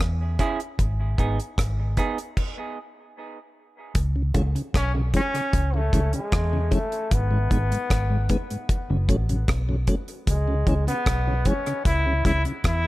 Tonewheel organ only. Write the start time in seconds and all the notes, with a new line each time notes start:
4.16 C#3
4.35 E3 G#3 C#4
4.55 C#3
4.95 C#3
5.14 E3 G#3 C#4
5.34 C#3
5.74 C#3
5.93 E3 G#3 C#4
6.13 C#3
6.53 C#3
6.71 E3 G#3 C#4
7.31 G#2
7.50 D#3 G#3 B3
7.71 G#2
8.10 G#2
8.30 D#3 G#3 B3
8.51 G#2
8.90 F#2 C#3
9.09 F#3 A3 C#4
9.30 F#2 C#3
9.69 F#2 C#3
9.88 F#3 A3 C#4
10.48 C#3
10.67 E3 G#3 C#4
10.87 C#3
11.27 C#3
11.46 E3 G#3 C#4
11.67 C#3
12.06 C#3
12.25 E3 G#3 C#4
12.45 C#3